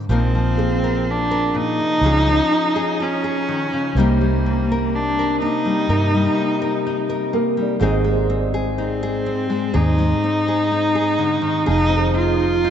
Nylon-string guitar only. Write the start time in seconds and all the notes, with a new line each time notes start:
0.09 A#2 F3 A#3 D#4 A#4
0.35 F3
0.59 A#3
0.84 A#4
1.31 A#4
1.55 A#2
1.80 C3
2.03 C#3 F3 C#4 F4 G#4
2.26 F3
2.52 C#4
2.76 G#4
3.00 F4
3.24 G#4
3.49 D#3
3.73 C#3
3.97 C3 G3 A#3 D#4 A#4
4.21 G3
4.46 A#3
4.72 A#4
5.19 A#4
5.42 A#3
5.65 G3
5.89 C3 A#4
6.14 G3
6.38 A#3
6.62 A#4
6.87 D#4
7.09 A#4
7.33 A#3
7.57 G3
7.80 G#2 G#3 C4 D#4 G#4
8.04 G#3
8.30 C4
8.54 G#4
8.78 D#4
9.03 G#4
9.26 C4
9.50 G#3
9.74 G#2 G#4
9.98 G#3
10.24 C4
10.48 G#4
10.72 D#4
10.95 G#4
11.19 D3
11.42 D#3
11.66 F3 G#4
11.89 C4
12.14 D#4
12.40 D#4
12.64 D#4